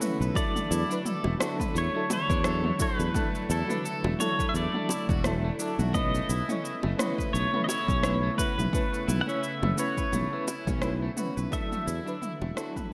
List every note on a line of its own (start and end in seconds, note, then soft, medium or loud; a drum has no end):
0.00 0.32 C#3 medium
0.00 0.31 A3 medium
0.00 11.48 A3 medium
0.00 0.32 B3 medium
0.00 0.32 C#4 medium
0.00 11.48 E4 medium
0.00 0.33 E4 medium
0.00 0.19 F#4 medium
0.00 0.33 B4 medium
0.00 mid tom medium
0.00 shaker medium
0.21 0.30 B1 medium
0.21 0.35 B4 medium
0.21 shaker soft
0.34 5.90 D3 medium
0.34 0.85 F#3 medium
0.34 5.90 F#3 medium
0.34 0.54 A3 medium
0.34 0.85 D4 medium
0.34 0.86 E4 medium
0.34 0.86 A4 loud
0.34 1.37 D5 loud
0.34 kick loud
0.34 shaker soft
0.56 0.69 A3 medium
0.56 mid tom medium
0.56 shaker soft
0.71 0.83 E2 medium
0.71 0.89 E4 loud
0.71 shaker medium
0.89 1.00 F#3 medium
0.89 1.04 D4 loud
0.89 1.00 D4 medium
0.89 1.01 E4 medium
0.89 1.01 B4 medium
0.89 shaker soft
1.05 1.24 A4 loud
1.05 mid tom medium
1.05 shaker soft
1.24 1.34 E1 medium
1.24 1.33 A3 medium
1.24 high bongo medium
1.39 1.89 F#3 medium
1.39 1.90 D4 medium
1.39 1.91 E4 medium
1.39 1.58 F#4 medium
1.39 1.91 A4 loud
1.39 cross-stick medium
1.39 shaker medium
1.60 1.74 B4 medium
1.60 kick medium
1.60 mid tom medium
1.60 shaker soft
1.74 1.87 E2 medium
1.74 1.93 A3 loud
1.74 2.12 C#5 medium
1.74 shaker soft
1.93 2.11 F#3 medium
1.93 2.08 A3 medium
1.93 2.11 D4 medium
1.93 2.12 E4 medium
1.93 2.12 A4 medium
2.10 2.29 E4 loud
2.10 2.82 C#5 loud
2.10 mid tom medium
2.10 high bongo loud
2.10 shaker medium
2.30 2.70 E2 loud
2.30 2.43 D4 loud
2.30 kick loud
2.30 shaker soft
2.43 2.65 F#3 medium
2.43 2.65 D4 medium
2.43 2.66 E4 medium
2.43 2.64 A4 loud
2.43 2.66 A4 loud
2.43 cross-stick medium
2.43 shaker soft
2.64 2.73 A3 medium
2.64 mid tom medium
2.78 3.10 F#3 medium
2.78 3.11 D4 medium
2.78 3.11 E4 medium
2.78 2.98 F#4 medium
2.78 3.12 A4 medium
2.78 3.53 B4 medium
2.78 kick loud
2.78 shaker medium
2.99 3.09 E2 medium
2.99 3.14 B4 medium
2.99 shaker soft
3.13 3.64 F#3 medium
3.13 3.33 A3 loud
3.13 3.64 D4 medium
3.13 3.65 E4 medium
3.13 3.65 A4 loud
3.13 kick loud
3.13 mid tom medium
3.13 shaker soft
3.35 3.48 A3 medium
3.35 shaker soft
3.50 3.62 E2 loud
3.50 3.69 E4 loud
3.50 4.22 A4 medium
3.50 shaker medium
3.68 3.79 F#3 medium
3.68 3.79 D4 medium
3.68 3.83 D4 medium
3.68 3.80 E4 medium
3.68 3.80 B4 medium
3.68 mid tom medium
3.68 shaker soft
3.85 4.04 A4 loud
3.85 shaker soft
4.04 4.13 E1 medium
4.04 4.13 A3 medium
4.04 high bongo loud
4.18 4.69 F#3 medium
4.18 4.69 D4 medium
4.18 4.70 E4 medium
4.18 4.38 F#4 medium
4.18 4.70 A4 loud
4.18 4.48 C#5 loud
4.18 mid tom medium
4.18 shaker medium
4.39 4.54 B4 medium
4.39 kick medium
4.39 shaker soft
4.49 4.55 E5 medium
4.54 4.66 E2 medium
4.54 4.72 A3 loud
4.54 5.21 D5 loud
4.54 shaker soft
4.73 4.90 F#3 medium
4.73 4.88 A3 medium
4.73 4.91 D4 medium
4.73 4.91 E4 medium
4.73 4.91 A4 medium
4.73 mid tom medium
4.89 5.08 E4 medium
4.89 high bongo medium
4.89 shaker medium
5.09 5.49 E1 loud
5.09 5.24 F#4 medium
5.09 kick loud
5.09 shaker soft
5.23 5.44 F#3 medium
5.23 5.42 A3 medium
5.23 5.45 D4 medium
5.23 5.45 E4 medium
5.23 5.46 A4 medium
5.23 cross-stick medium
5.23 mid tom medium
5.23 shaker soft
5.44 5.52 A3 medium
5.58 5.90 F#3 medium
5.58 5.77 D4 medium
5.58 5.90 D4 medium
5.58 5.91 E4 medium
5.58 5.91 A4 medium
5.58 shaker medium
5.79 6.19 B1 medium
5.79 5.93 F#4 medium
5.79 mid tom medium
5.79 shaker soft
5.94 11.48 C#3 medium
5.94 6.44 A3 medium
5.94 6.12 A3 loud
5.94 11.48 B3 medium
5.94 6.44 C#4 medium
5.94 6.45 E4 medium
5.94 6.45 B4 loud
5.94 7.33 D#5 loud
5.94 kick loud
5.94 mid tom medium
5.94 shaker soft
6.14 6.28 A3 medium
6.14 shaker soft
6.29 6.41 B1 medium
6.29 6.48 E4 loud
6.29 shaker medium
6.48 6.58 A3 medium
6.48 6.62 C#4 medium
6.48 6.59 C#4 medium
6.48 6.60 E4 medium
6.48 6.60 C#5 medium
6.48 mid tom medium
6.48 shaker soft
6.64 6.74 E4 medium
6.64 shaker soft
6.83 6.93 F#1 medium
6.83 6.92 A3 medium
6.83 high bongo medium
6.97 7.48 A3 medium
6.97 7.48 C#4 medium
6.97 7.49 E4 medium
6.97 7.16 F#4 medium
6.97 7.49 B4 loud
6.97 cross-stick medium
6.97 mid tom medium
6.97 shaker medium
7.18 7.33 B4 medium
7.18 kick medium
7.18 shaker soft
7.33 7.46 B1 medium
7.33 7.51 A3 loud
7.33 7.63 C#5 medium
7.33 shaker soft
7.53 7.69 A3 medium
7.53 7.67 A3 medium
7.53 7.70 C#4 medium
7.53 7.70 E4 medium
7.53 7.71 B4 medium
7.53 mid tom medium
7.64 7.68 D#5 medium
7.68 7.87 E4 loud
7.68 8.40 C#5 loud
7.68 high bongo medium
7.68 shaker medium
7.88 8.29 B1 loud
7.88 8.02 C#4 medium
7.88 kick loud
7.88 shaker soft
8.02 8.23 A3 medium
8.02 8.24 C#4 medium
8.02 8.14 E4 medium
8.02 8.25 E4 medium
8.02 8.25 B4 loud
8.02 cross-stick medium
8.02 mid tom medium
8.02 shaker soft
8.23 8.31 A3 medium
8.37 8.69 A3 medium
8.37 8.69 C#4 medium
8.37 8.70 E4 medium
8.37 8.56 F#4 medium
8.37 9.22 B4 loud
8.37 8.70 B4 medium
8.37 kick loud
8.37 shaker medium
8.58 8.67 B1 medium
8.58 8.72 B4 medium
8.58 mid tom medium
8.58 shaker soft
8.72 9.22 A3 medium
8.72 8.91 A3 medium
8.72 9.23 C#4 medium
8.72 9.23 E4 medium
8.72 9.24 B4 loud
8.72 kick loud
8.72 shaker soft
8.93 9.06 A3 medium
8.93 shaker soft
9.08 9.20 B1 medium
9.08 9.27 E4 loud
9.08 mid tom medium
9.08 shaker medium
9.21 9.28 F#5 medium
9.26 9.37 A3 medium
9.26 9.37 C#4 medium
9.26 9.41 C#4 medium
9.26 9.38 E4 medium
9.26 9.38 C#5 medium
9.26 9.80 E5 loud
9.26 shaker soft
9.43 9.53 E4 medium
9.43 shaker soft
9.62 9.72 F#1 medium
9.62 9.71 A3 medium
9.62 mid tom medium
9.62 high bongo medium
9.76 10.27 A3 medium
9.76 10.27 C#4 medium
9.76 10.28 E4 medium
9.76 9.96 F#4 medium
9.76 10.28 B4 medium
9.76 10.44 C#5 medium
9.76 shaker medium
9.97 10.12 B4 medium
9.97 kick medium
9.97 shaker soft
10.12 10.25 B1 medium
10.12 10.30 A3 loud
10.12 mid tom medium
10.12 shaker soft
10.31 10.48 A3 medium
10.31 10.46 A3 medium
10.31 10.48 C#4 medium
10.31 10.49 E4 medium
10.31 10.49 B4 loud
10.47 10.66 E4 loud
10.47 high bongo medium
10.47 shaker medium
10.67 11.08 B1 loud
10.67 10.81 C#4 loud
10.67 kick loud
10.67 mid tom medium
10.67 shaker soft
10.80 11.02 A3 medium
10.80 11.02 C#4 medium
10.80 10.93 E4 medium
10.80 11.03 E4 medium
10.80 11.04 B4 loud
10.80 cross-stick medium
10.80 shaker soft
11.02 11.10 A3 medium
11.16 11.48 A3 medium
11.16 11.48 C#4 medium
11.16 11.49 E4 medium
11.16 11.35 F#4 medium
11.16 11.49 B4 medium
11.16 mid tom medium
11.16 shaker medium
11.37 11.46 B1 medium
11.37 11.51 B4 medium
11.37 shaker soft
11.51 12.93 D3 medium
11.51 12.01 F#3 medium
11.51 12.93 F#3 medium
11.51 12.93 A3 medium
11.51 11.70 A3 loud
11.51 12.02 D4 medium
11.51 12.93 E4 medium
11.51 12.02 E4 medium
11.51 12.03 A4 loud
11.51 12.93 E5 medium
11.51 kick loud
11.51 shaker soft
11.72 11.85 A3 medium
11.72 mid tom medium
11.72 shaker soft
11.86 11.99 E2 medium
11.86 12.05 E4 loud
11.86 shaker medium
12.05 12.16 F#3 medium
12.05 12.16 D4 medium
12.05 12.20 D4 medium
12.05 12.17 E4 medium
12.05 12.18 B4 medium
12.05 shaker soft
12.21 12.32 E4 medium
12.21 mid tom medium
12.21 shaker soft
12.41 12.51 E1 medium
12.41 12.50 A3 medium
12.41 high bongo medium
12.55 12.93 F#3 medium
12.55 12.93 D4 medium
12.55 12.93 E4 medium
12.55 12.74 F#4 medium
12.55 12.93 A4 loud
12.55 cross-stick medium
12.55 shaker medium
12.76 12.91 B4 medium
12.76 kick medium
12.76 mid tom medium
12.76 shaker soft